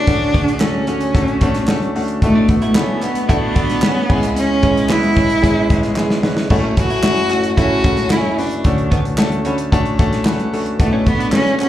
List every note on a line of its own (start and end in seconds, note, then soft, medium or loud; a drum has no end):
0.00 0.61 D4 loud
0.07 2.18 D2 medium
0.07 2.18 D3 medium
0.07 0.32 A3 medium
0.07 0.32 C#4 medium
0.07 0.33 D4 medium
0.07 0.33 F#4 medium
0.07 0.33 A4 loud
0.07 kick loud
0.07 closed hi-hat medium
0.34 0.58 A3 medium
0.34 0.47 B3 medium
0.34 0.59 C#4 medium
0.34 0.59 D4 medium
0.34 0.59 F#4 medium
0.34 0.60 G#4 medium
0.34 kick medium
0.34 closed hi-hat medium
0.48 closed hi-hat medium
0.59 0.86 A3 medium
0.59 1.94 C#4 loud
0.59 0.86 C#4 medium
0.59 0.86 D4 medium
0.59 0.86 F#4 medium
0.59 0.86 A4 medium
0.59 snare loud
0.59 clap loud
0.87 1.13 A3 medium
0.87 1.01 C#4 medium
0.87 1.13 C#4 medium
0.87 1.13 D4 medium
0.87 1.13 F#4 medium
0.87 1.13 A4 medium
0.87 closed hi-hat medium
1.01 closed hi-hat medium
1.14 1.40 A3 loud
1.14 1.40 C#4 medium
1.14 1.40 D4 medium
1.14 1.40 F#4 medium
1.14 1.40 A4 loud
1.14 kick loud
1.14 closed hi-hat medium
1.28 closed hi-hat soft
1.41 1.67 A3 loud
1.41 1.67 C#4 loud
1.41 1.67 D4 loud
1.41 1.67 F#4 loud
1.41 1.67 A4 loud
1.41 kick loud
1.41 closed hi-hat medium
1.54 snare soft
1.54 closed hi-hat medium
1.68 1.94 A3 medium
1.68 1.94 C#4 medium
1.68 1.94 D4 medium
1.68 1.94 F#4 medium
1.68 1.94 A4 loud
1.68 snare loud
1.68 clap loud
1.82 closed hi-hat soft
1.95 2.20 A3 medium
1.95 2.20 C#4 medium
1.95 2.20 D4 medium
1.95 2.21 F#4 medium
1.95 2.21 A4 medium
1.95 open hi-hat medium
2.08 closed hi-hat medium
2.22 4.06 B1 medium
2.22 2.44 A2 loud
2.22 4.06 B2 medium
2.22 2.43 A3 loud
2.22 2.78 A3 loud
2.22 2.47 A3 medium
2.22 2.48 B3 medium
2.22 2.48 D4 medium
2.22 2.48 F#4 medium
2.22 2.48 A4 loud
2.22 kick medium
2.22 closed hi-hat medium
2.35 2.48 D4 medium
2.49 2.71 B2 medium
2.49 2.74 A3 medium
2.49 2.71 B3 loud
2.49 2.74 B3 medium
2.49 2.74 D4 medium
2.49 2.74 F#4 medium
2.49 2.75 A4 medium
2.49 kick medium
2.49 closed hi-hat medium
2.62 3.00 E4 medium
2.62 closed hi-hat medium
2.75 2.97 C#3 medium
2.75 3.01 A3 medium
2.75 3.29 B3 medium
2.75 3.01 B3 medium
2.75 2.97 C#4 loud
2.75 3.01 D4 medium
2.75 3.01 F#4 medium
2.75 3.01 A4 loud
2.75 snare loud
2.75 clap loud
3.02 3.24 B2 medium
3.02 3.27 A3 medium
3.02 3.24 B3 loud
3.02 3.28 B3 medium
3.02 3.28 D4 medium
3.02 3.28 F#4 medium
3.02 3.28 A4 medium
3.02 clap medium
3.02 closed hi-hat medium
3.15 closed hi-hat medium
3.29 3.80 D3 loud
3.29 3.54 A3 loud
3.29 3.54 B3 medium
3.29 4.33 B3 loud
3.29 3.54 D4 loud
3.29 3.80 D4 loud
3.29 3.54 E4 medium
3.29 3.54 F#4 loud
3.29 3.54 A4 loud
3.29 kick loud
3.29 closed hi-hat loud
3.55 3.81 A3 medium
3.55 3.81 B3 medium
3.55 3.81 D4 medium
3.55 3.69 D4 medium
3.55 3.81 F#4 medium
3.55 3.81 A4 loud
3.55 kick loud
3.55 closed hi-hat medium
3.70 snare soft
3.70 closed hi-hat medium
3.82 4.21 C#3 loud
3.82 4.07 A3 medium
3.82 4.07 B3 medium
3.82 4.21 C#4 loud
3.82 4.08 D4 medium
3.82 4.08 F#4 medium
3.82 4.08 B4 medium
3.82 snare loud
3.82 clap loud
4.09 6.20 C#2 medium
4.09 6.20 C#3 medium
4.09 4.59 G#3 medium
4.09 4.59 B3 medium
4.09 4.59 C#4 medium
4.09 4.59 E4 medium
4.09 4.59 G#4 loud
4.09 kick loud
4.09 crash medium
4.23 closed hi-hat medium
4.36 4.92 C#4 loud
4.36 closed hi-hat loud
4.62 4.87 G#3 medium
4.62 4.88 B3 medium
4.62 4.88 C#4 medium
4.62 4.76 C#4 medium
4.62 4.88 E4 medium
4.62 4.88 G#4 medium
4.62 kick loud
4.62 closed hi-hat medium
4.77 closed hi-hat medium
4.89 5.14 G#3 medium
4.89 5.15 B3 medium
4.89 5.16 B3 medium
4.89 5.15 C#4 medium
4.89 5.15 E4 medium
4.89 6.24 E4 loud
4.89 5.15 B4 medium
4.89 snare loud
4.89 clap loud
5.03 closed hi-hat soft
5.16 5.41 G#3 medium
5.16 5.41 B3 medium
5.16 5.41 C#4 medium
5.16 5.30 C#4 medium
5.16 5.41 E4 medium
5.16 5.41 G#4 medium
5.16 kick medium
5.16 closed hi-hat medium
5.30 closed hi-hat medium
5.42 5.68 G#3 loud
5.42 5.68 B3 loud
5.42 5.68 C#4 medium
5.42 5.68 E4 medium
5.42 5.68 G#4 loud
5.42 kick medium
5.42 closed hi-hat loud
5.70 5.95 G#3 loud
5.70 5.95 B3 medium
5.70 5.95 C#4 medium
5.70 5.95 E4 medium
5.70 5.96 G#4 loud
5.70 kick loud
5.70 closed hi-hat medium
5.83 snare soft
5.83 closed hi-hat medium
5.96 6.22 G#3 medium
5.96 6.22 B3 medium
5.96 6.22 C#4 medium
5.96 6.22 E4 medium
5.96 6.22 G#4 loud
5.96 snare medium
5.96 clap medium
6.10 snare medium
6.23 6.49 G#3 medium
6.23 6.49 B3 medium
6.23 6.49 C#4 medium
6.23 6.49 E4 medium
6.23 6.49 B4 medium
6.23 snare loud
6.37 snare loud
6.50 8.61 F#1 medium
6.50 8.61 F#2 medium
6.50 6.72 A2 loud
6.50 6.72 A3 loud
6.50 6.75 A3 loud
6.50 6.76 C#4 loud
6.50 6.75 E4 loud
6.50 6.76 F#4 loud
6.50 6.76 A4 loud
6.50 kick loud
6.50 splash medium
6.64 6.77 C#4 medium
6.77 6.98 B2 medium
6.77 7.02 A3 medium
6.77 6.98 B3 loud
6.77 7.02 C#4 medium
6.77 7.02 E4 medium
6.77 7.02 F#4 medium
6.77 7.55 F#4 loud
6.77 7.02 A4 medium
6.77 kick medium
6.77 closed hi-hat medium
6.90 7.28 E4 medium
6.90 closed hi-hat soft
7.03 7.25 C#3 medium
7.03 7.29 A3 medium
7.03 7.25 C#4 loud
7.03 7.29 C#4 medium
7.03 7.29 E4 medium
7.03 7.29 F#4 medium
7.03 7.29 A4 medium
7.03 snare loud
7.03 clap loud
7.17 closed hi-hat soft
7.30 7.52 A2 loud
7.30 7.56 A3 medium
7.30 7.52 A3 loud
7.30 7.56 C#4 medium
7.30 7.56 E4 medium
7.30 7.56 F#4 medium
7.30 7.56 A4 medium
7.30 clap medium
7.30 closed hi-hat medium
7.43 closed hi-hat medium
7.57 8.08 C#3 loud
7.57 7.83 A3 loud
7.57 8.08 C#4 loud
7.57 7.83 C#4 medium
7.57 7.83 E4 medium
7.57 8.13 F#4 loud
7.57 7.83 F#4 medium
7.57 7.83 A4 loud
7.57 kick loud
7.57 closed hi-hat medium
7.84 8.09 A3 medium
7.84 7.97 C#4 medium
7.84 8.10 C#4 medium
7.84 8.10 E4 medium
7.84 8.10 F#4 medium
7.84 8.10 A4 medium
7.84 kick loud
7.84 closed hi-hat medium
7.97 snare soft
7.97 closed hi-hat medium
8.10 8.49 C#3 loud
8.10 8.37 A3 medium
8.10 8.49 C#4 loud
8.10 8.37 C#4 medium
8.10 8.40 E4 loud
8.10 8.37 E4 medium
8.10 8.37 F#4 medium
8.10 8.37 A4 medium
8.10 snare loud
8.10 clap loud
8.38 8.63 A3 medium
8.38 8.63 C#4 medium
8.38 8.92 D4 medium
8.38 8.63 E4 medium
8.38 8.63 F#4 medium
8.38 8.64 B4 medium
8.38 open hi-hat medium
8.51 closed hi-hat soft
8.64 10.75 D2 medium
8.64 10.75 D3 medium
8.64 8.90 A3 loud
8.64 8.90 C#4 medium
8.64 8.90 D4 medium
8.64 8.90 F#4 medium
8.64 8.90 A4 loud
8.64 kick loud
8.64 closed hi-hat loud
8.78 closed hi-hat soft
8.91 9.17 A3 medium
8.91 9.04 B3 medium
8.91 9.17 C#4 medium
8.91 9.17 D4 medium
8.91 9.17 F#4 medium
8.91 9.17 A4 medium
8.91 kick medium
8.91 closed hi-hat medium
9.05 closed hi-hat medium
9.18 9.44 A3 medium
9.18 9.44 C#4 medium
9.18 9.44 D4 medium
9.18 9.44 F#4 medium
9.18 9.44 A4 loud
9.18 snare loud
9.18 clap loud
9.32 closed hi-hat soft
9.45 9.71 A3 medium
9.45 9.58 C#4 medium
9.45 9.71 C#4 medium
9.45 9.71 D4 medium
9.45 9.71 F#4 medium
9.45 9.71 A4 loud
9.45 9.71 B5 medium
9.45 closed hi-hat medium
9.58 closed hi-hat medium
9.72 9.97 A3 loud
9.72 9.97 C#4 loud
9.72 9.97 D4 loud
9.72 9.97 F#4 loud
9.72 9.98 A4 loud
9.72 10.22 A5 medium
9.72 kick loud
9.72 closed hi-hat medium
9.86 closed hi-hat soft
9.99 10.24 A3 loud
9.99 10.24 C#4 medium
9.99 10.24 D4 medium
9.99 10.24 F#4 medium
9.99 10.24 A4 loud
9.99 kick loud
9.99 closed hi-hat medium
10.13 snare soft
10.13 closed hi-hat medium
10.25 10.51 A3 medium
10.25 10.51 C#4 medium
10.25 10.51 D4 medium
10.25 10.51 F#4 medium
10.25 10.51 B4 medium
10.25 10.76 F#5 medium
10.25 snare loud
10.25 clap loud
10.40 closed hi-hat soft
10.53 10.78 A3 medium
10.53 10.78 C#4 medium
10.53 10.78 D4 medium
10.53 10.78 F#4 medium
10.53 10.78 A4 loud
10.53 open hi-hat medium
10.66 closed hi-hat medium
10.79 11.69 B1 medium
10.79 11.01 A2 loud
10.79 11.69 B2 medium
10.79 11.01 A3 loud
10.79 11.05 A3 loud
10.79 11.09 A3 loud
10.79 11.04 B3 loud
10.79 11.05 D4 medium
10.79 11.05 F#4 medium
10.79 11.05 A4 loud
10.79 kick loud
10.79 closed hi-hat loud
10.93 11.06 C#4 medium
11.06 11.27 B2 medium
11.06 11.31 A3 medium
11.06 11.28 B3 loud
11.06 11.31 B3 medium
11.06 11.34 B3 loud
11.06 11.31 D4 medium
11.06 11.32 F#4 medium
11.06 11.32 A4 medium
11.06 kick medium
11.06 closed hi-hat medium
11.19 11.57 D4 medium
11.19 closed hi-hat medium
11.32 11.54 C#3 loud
11.32 11.58 A3 medium
11.32 11.58 B3 medium
11.32 11.54 C#4 loud
11.32 11.59 C#4 loud
11.32 11.58 D4 medium
11.32 11.58 F#4 medium
11.32 11.59 A4 medium
11.32 snare loud
11.32 clap loud
11.47 closed hi-hat soft
11.59 11.69 B2 loud
11.59 11.69 A3 medium
11.59 11.69 B3 loud
11.59 11.69 B3 medium
11.59 11.69 C#4 loud
11.59 11.69 D4 medium
11.59 11.69 F#4 medium
11.59 11.69 G#4 medium
11.59 clap medium
11.59 closed hi-hat medium